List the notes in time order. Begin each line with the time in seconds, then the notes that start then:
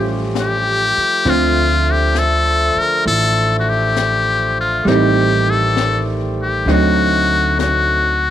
Already playing: A1 F3 G3 A3 C#4 F4 G4 C5
0.35 snare, hi-hat pedal
0.40 G4
0.97 muted upright bass stroke
1.25 D2 D3 F3 C4 E5, brush sweep, snare
1.29 F4
1.92 G4
2.15 A4, snare, hi-hat pedal
2.76 A#4, muted upright bass stroke
3.05 A1 A4, brush sweep
3.59 F#4
3.69 G4
3.96 snare, hi-hat pedal
4.61 F4
4.84 A1 D#3 G3 G4, brush sweep, snare
4.88 C4 D#4 G4
5.50 A4
5.77 snare, hi-hat pedal
6.42 G4
6.66 D2 D3 F#3 C4 D#4, brush sweep, snare
6.71 F#4
7.59 F#4, snare, hi-hat pedal